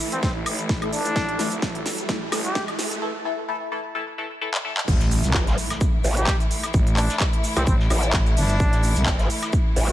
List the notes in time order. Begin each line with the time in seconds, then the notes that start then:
Already playing: E3 A3 E4 A4 E5 A5, riser
0.00 shaker
0.12 C2 C4, closed hi-hat, shaker
0.23 A1 C4, kick, snare, shaker
0.46 A1, open hi-hat, high woodblock, shaker
0.59 closed hi-hat, shaker
0.69 A1, kick, snare, shaker
0.82 E3 A3 E4 A4, closed hi-hat, high woodblock
0.93 G1 D4, open hi-hat, shaker
1.05 closed hi-hat, shaker
1.16 A1 E3 A3 E4 A4, kick, snare, shaker
1.29 closed hi-hat
1.39 E3 A3 E4 A4, snare, open hi-hat, shaker
1.52 C2, closed hi-hat, shaker
1.62 G1, kick, snare, shaker
1.75 closed hi-hat
1.86 snare, open hi-hat, shaker
1.98 closed hi-hat, shaker
2.09 E3 A3 E4 A4, kick, snare, shaker
2.32 A1 E3 A3 E4 A4, snare, open hi-hat, high woodblock, shaker
2.45 G4, closed hi-hat, shaker
2.55 kick, snare, shaker
2.68 closed hi-hat, high woodblock
2.79 snare, open hi-hat, shaker
2.91 closed hi-hat, shaker
3.02 E3 A3 E4 A4
3.25 E3 A3 E4 A4
3.48 E3 A3 E4 A4
3.72 E3 A3 E4 A4
3.95 E3 A3 E4 A4
4.18 E3 A3 E4 A4
4.41 E3 A3 E4 A4
4.54 clap
4.65 E3 A3 E4 A4
4.77 clap
4.88 A1 E3 A3 E4, kick, crash, impact, shaker
5.00 snare, closed hi-hat, shaker
5.11 open hi-hat, shaker
5.24 C2, closed hi-hat, shaker
5.34 G1, kick, snare, clap, shaker
5.47 snare, closed hi-hat
5.58 open hi-hat, shaker
5.70 snare, closed hi-hat, high woodblock, shaker
5.81 kick, shaker
6.04 A1, open hi-hat, shaker
6.17 G4, closed hi-hat, shaker
6.27 kick, snare, clap, shaker
6.40 closed hi-hat, shaker
6.51 open hi-hat, shaker
6.64 snare, closed hi-hat, high woodblock, shaker
6.74 A1, kick, shaker
6.87 closed hi-hat, shaker
6.97 D4, clap, open hi-hat, shaker
7.10 snare, closed hi-hat, shaker
7.19 kick, snare, clap, shaker
7.21 shaker
7.33 closed hi-hat
7.44 open hi-hat, shaker
7.57 C2 C4, closed hi-hat, high woodblock, shaker
7.67 A1 C4, kick, shaker
7.80 snare
7.90 A1, open hi-hat, high woodblock, shaker
8.03 closed hi-hat, shaker
8.13 A1, kick, snare, clap, shaker
8.14 shaker
8.26 closed hi-hat, shaker
8.37 G1 D4, open hi-hat, shaker
8.50 closed hi-hat, shaker
8.60 A1, kick, shaker
8.73 snare, closed hi-hat, shaker
8.83 open hi-hat, shaker
8.84 shaker
8.96 C2, closed hi-hat, shaker
9.06 G1, kick, snare, clap, shaker
9.19 snare, closed hi-hat
9.30 open hi-hat, shaker
9.42 snare, closed hi-hat, high woodblock, shaker
9.53 kick, shaker
9.76 A1, open hi-hat, shaker